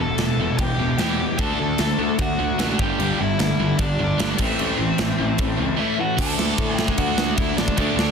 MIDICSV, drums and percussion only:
0, 0, Header, 1, 2, 480
1, 0, Start_track
1, 0, Tempo, 399467
1, 1668, Time_signature, 4, 2, 24, 8
1, 9746, End_track
2, 0, Start_track
2, 0, Title_t, "Drums"
2, 214, Note_on_c, 9, 49, 60
2, 225, Note_on_c, 9, 38, 99
2, 334, Note_off_c, 9, 49, 0
2, 345, Note_off_c, 9, 38, 0
2, 701, Note_on_c, 9, 49, 64
2, 706, Note_on_c, 9, 36, 119
2, 822, Note_off_c, 9, 49, 0
2, 826, Note_off_c, 9, 36, 0
2, 1182, Note_on_c, 9, 49, 63
2, 1193, Note_on_c, 9, 38, 109
2, 1302, Note_off_c, 9, 49, 0
2, 1313, Note_off_c, 9, 38, 0
2, 1662, Note_on_c, 9, 49, 58
2, 1668, Note_on_c, 9, 36, 113
2, 1783, Note_off_c, 9, 49, 0
2, 1788, Note_off_c, 9, 36, 0
2, 2140, Note_on_c, 9, 49, 63
2, 2151, Note_on_c, 9, 38, 114
2, 2260, Note_off_c, 9, 49, 0
2, 2271, Note_off_c, 9, 38, 0
2, 2625, Note_on_c, 9, 49, 61
2, 2631, Note_on_c, 9, 36, 114
2, 2745, Note_off_c, 9, 49, 0
2, 2751, Note_off_c, 9, 36, 0
2, 3112, Note_on_c, 9, 49, 57
2, 3122, Note_on_c, 9, 38, 109
2, 3232, Note_off_c, 9, 49, 0
2, 3243, Note_off_c, 9, 38, 0
2, 3355, Note_on_c, 9, 36, 104
2, 3475, Note_off_c, 9, 36, 0
2, 3600, Note_on_c, 9, 49, 58
2, 3721, Note_off_c, 9, 49, 0
2, 4076, Note_on_c, 9, 49, 53
2, 4087, Note_on_c, 9, 38, 114
2, 4196, Note_off_c, 9, 49, 0
2, 4207, Note_off_c, 9, 38, 0
2, 4549, Note_on_c, 9, 49, 61
2, 4554, Note_on_c, 9, 36, 118
2, 4669, Note_off_c, 9, 49, 0
2, 4674, Note_off_c, 9, 36, 0
2, 5038, Note_on_c, 9, 49, 62
2, 5049, Note_on_c, 9, 38, 109
2, 5158, Note_off_c, 9, 49, 0
2, 5169, Note_off_c, 9, 38, 0
2, 5266, Note_on_c, 9, 49, 99
2, 5276, Note_on_c, 9, 36, 101
2, 5386, Note_off_c, 9, 49, 0
2, 5396, Note_off_c, 9, 36, 0
2, 5516, Note_on_c, 9, 49, 58
2, 5636, Note_off_c, 9, 49, 0
2, 5985, Note_on_c, 9, 49, 58
2, 5996, Note_on_c, 9, 38, 111
2, 6105, Note_off_c, 9, 49, 0
2, 6116, Note_off_c, 9, 38, 0
2, 6466, Note_on_c, 9, 49, 62
2, 6475, Note_on_c, 9, 36, 111
2, 6586, Note_off_c, 9, 49, 0
2, 6595, Note_off_c, 9, 36, 0
2, 7431, Note_on_c, 9, 36, 111
2, 7433, Note_on_c, 9, 49, 64
2, 7433, Note_on_c, 9, 57, 124
2, 7552, Note_off_c, 9, 36, 0
2, 7554, Note_off_c, 9, 49, 0
2, 7554, Note_off_c, 9, 57, 0
2, 7679, Note_on_c, 9, 38, 117
2, 7799, Note_off_c, 9, 38, 0
2, 7908, Note_on_c, 9, 49, 67
2, 7910, Note_on_c, 9, 36, 118
2, 8028, Note_off_c, 9, 49, 0
2, 8030, Note_off_c, 9, 36, 0
2, 8153, Note_on_c, 9, 38, 119
2, 8268, Note_on_c, 9, 36, 80
2, 8274, Note_off_c, 9, 38, 0
2, 8382, Note_on_c, 9, 49, 74
2, 8388, Note_off_c, 9, 36, 0
2, 8388, Note_on_c, 9, 36, 101
2, 8503, Note_off_c, 9, 49, 0
2, 8508, Note_off_c, 9, 36, 0
2, 8626, Note_on_c, 9, 38, 118
2, 8746, Note_off_c, 9, 38, 0
2, 8862, Note_on_c, 9, 49, 74
2, 8865, Note_on_c, 9, 36, 115
2, 8982, Note_off_c, 9, 49, 0
2, 8986, Note_off_c, 9, 36, 0
2, 9111, Note_on_c, 9, 38, 127
2, 9226, Note_on_c, 9, 36, 94
2, 9231, Note_off_c, 9, 38, 0
2, 9340, Note_on_c, 9, 49, 67
2, 9346, Note_off_c, 9, 36, 0
2, 9346, Note_on_c, 9, 36, 104
2, 9460, Note_off_c, 9, 49, 0
2, 9467, Note_off_c, 9, 36, 0
2, 9599, Note_on_c, 9, 38, 111
2, 9719, Note_off_c, 9, 38, 0
2, 9746, End_track
0, 0, End_of_file